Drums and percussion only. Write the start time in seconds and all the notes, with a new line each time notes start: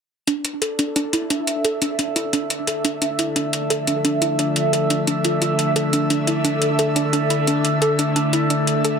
0.27 closed hi-hat
0.45 closed hi-hat
0.62 closed hi-hat
0.79 closed hi-hat
0.96 closed hi-hat
1.13 closed hi-hat
1.30 closed hi-hat
1.47 closed hi-hat
1.65 closed hi-hat
1.82 closed hi-hat
1.99 closed hi-hat
2.16 closed hi-hat
2.33 closed hi-hat
2.50 closed hi-hat
2.67 closed hi-hat
2.85 closed hi-hat
3.02 closed hi-hat
3.19 closed hi-hat
3.36 closed hi-hat
3.53 closed hi-hat
3.70 closed hi-hat
3.87 closed hi-hat
4.05 closed hi-hat
4.22 closed hi-hat
4.39 closed hi-hat
4.56 closed hi-hat
4.73 closed hi-hat
4.90 closed hi-hat
5.07 closed hi-hat
5.25 closed hi-hat
5.42 closed hi-hat
5.59 closed hi-hat
5.76 closed hi-hat
5.93 closed hi-hat
6.10 closed hi-hat
6.27 closed hi-hat
6.45 closed hi-hat
6.62 closed hi-hat
6.79 closed hi-hat
6.96 closed hi-hat
7.13 closed hi-hat
7.30 closed hi-hat
7.47 closed hi-hat
7.65 closed hi-hat
7.82 closed hi-hat
7.99 closed hi-hat
8.16 closed hi-hat
8.33 closed hi-hat
8.50 closed hi-hat
8.67 closed hi-hat
8.85 closed hi-hat